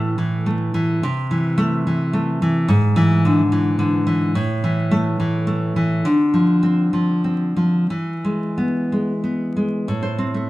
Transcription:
Already playing: A2 E3 A3
0.18 E3
0.46 A3
0.74 E3
1.03 C3
1.31 E3
1.58 A3
1.87 E3
2.13 A3
2.42 E3
2.68 G#2
2.96 E3
3.25 D3
3.52 E3
3.79 D3
4.07 E3
4.35 A2
4.64 E3
4.91 A3
5.20 E3
5.47 A3
5.76 E3
6.05 D3
6.34 F3
6.63 C4
6.93 F3
7.24 C4
7.56 F3
7.90 E3
8.25 G#3
8.58 B3
8.92 G#3
9.24 B3
9.56 G#3
9.88 A2
10.03 C5
10.18 C4
10.34 A3

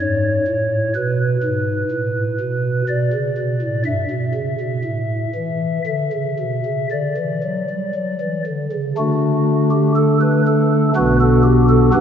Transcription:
0.00 G#2 C#5
0.48 A2
0.95 B2 B4
1.43 G#2
1.91 A2
2.40 B2
2.89 B2 D5
3.13 C#3
3.37 B2
3.62 A2
3.85 G2 E5
4.10 B2
4.34 C#3
4.60 B2
4.84 A2
5.35 E3
5.86 D3 E5
6.12 C#3
6.39 B2
6.65 C#3
6.91 D3 D5
7.17 E3
7.43 F#3
7.70 G3
7.95 F#3
8.21 E3
8.46 D3
8.72 C#3
8.97 D3 A3 D4 F#4
9.71 G4
9.96 A4
10.21 B4
10.47 A4
10.96 B1 B2 B3 D4 F#4 B4
11.21 A4
11.44 G4
11.69 A4
11.93 G1 G2 B3 D4 G4 B4

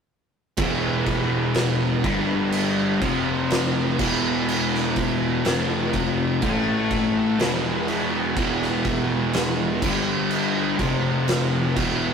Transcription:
0.57 E1 E2 B2 E3, kick, crash
1.06 kick, crash
1.54 snare, crash
2.03 G1 G2 D3 G3, kick, crash
2.52 crash
3.01 F1 F2 C3 F3, kick, crash
3.50 snare, crash
3.99 E1 E2 B2 E3, kick, crash
4.48 crash
4.74 snare
4.96 kick, crash
5.45 F1 F2 C3 F3, snare, crash
5.93 kick, crash
6.42 A1 A2 E3 A3, kick, crash
6.91 kick, crash
7.39 E1 E2 B2 E3, snare, crash
7.88 crash
8.36 E1 E2 B2 E3, kick, crash
8.62 snare
8.85 kick, crash
9.33 snare, crash
9.82 G1 G2 D3 G3, kick, crash
10.31 crash
10.79 F1 F2 C3 F3, kick, crash
11.28 snare, crash
11.76 E1 E2 B2 E3, kick, crash

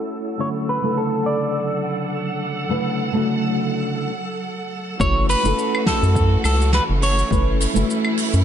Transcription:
Already playing: A3 C#4 E4 F#4 A4 C#5 F#5 E6
0.38 D3 F#3 A3 C#4 E4 F#4 C#5 F#5
0.69 B4
0.82 C#3 D3 A3 E4 A4
0.98 A4
1.26 D5
2.69 C#3 D3 A3 E4 B4
3.12 C#3 D3 A3 E4 F#4
4.99 F#1 E3 A3 C#4 E4 F#4 C#5, kick, shaker
5.29 B4, open hi-hat, shaker
5.43 F#1 A3 C#4 E4 A4, shaker
5.59 shaker
5.75 claves
5.86 A4, kick, snare, open hi-hat, shaker
6.03 F#2, shaker
6.15 kick, shaker
6.44 C#2 A4, open hi-hat, claves, shaker
6.62 shaker
6.73 B4, snare, shaker
6.90 F#1
7.02 C#5, open hi-hat, shaker
7.19 shaker
7.30 F#1 A3 C#4 E4 B4, kick, shaker
7.60 open hi-hat, shaker
7.74 F#1 A3 C#4 E4 F#4, shaker
7.90 shaker
8.05 claves
8.17 open hi-hat, shaker
8.33 F#2, shaker

